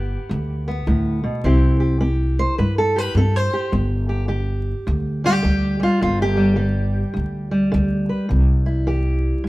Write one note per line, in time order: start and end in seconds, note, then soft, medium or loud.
0.00 0.16 G1 loud
0.00 0.26 D3 medium
0.00 0.66 B3 soft
0.00 1.07 G4 medium
0.29 0.83 D2 medium
0.29 0.81 D2 medium
0.68 1.45 B3 soft
0.87 1.19 D2 medium
0.87 1.23 A2 medium
1.24 1.45 B2 medium
1.44 2.44 C2 medium
1.44 1.98 C3 medium
1.44 1.99 C4 soft
1.44 3.71 E4 soft
1.44 1.80 G4 medium
1.80 2.00 G4 soft
2.01 2.54 C4 medium
2.01 2.96 G4 soft
2.39 2.58 C5 loud
2.58 3.09 G2 medium
2.58 3.12 G2 medium
2.58 2.78 B4 medium
2.78 2.98 A4 medium
2.96 3.53 G4 soft
2.96 3.17 B4 medium
3.15 3.47 G2 medium
3.15 3.69 C4 medium
3.15 3.36 A4 medium
3.36 3.74 C5 medium
3.53 4.09 G4 medium
3.72 4.72 G1 loud
3.72 4.26 G2 medium
4.09 4.28 G4 soft
4.28 4.82 D3 medium
4.28 5.25 G4 medium
4.87 5.40 D2 medium
4.87 5.37 D2 medium
5.24 5.79 G3 soft
5.24 5.83 G4 loud
5.43 5.76 D2 medium
5.43 5.96 D3 medium
5.80 6.36 G3 soft
5.80 6.01 F4 medium
6.01 7.02 G1 loud
6.01 6.54 G2 medium
6.01 6.21 F4 medium
6.22 7.93 G4 loud
6.37 6.56 G3 soft
6.56 7.10 D3 medium
6.56 7.51 G3 soft
7.14 7.68 D2 medium
7.14 7.66 D2 medium
7.51 9.49 G3 soft
7.72 8.05 D2 medium
7.72 8.26 D3 medium
8.09 8.28 B4 soft
8.29 9.31 C2 medium
8.29 8.83 C3 medium
8.66 9.49 E4 soft
8.87 9.41 E3 medium
8.87 9.49 G4 soft
9.44 9.49 G2 medium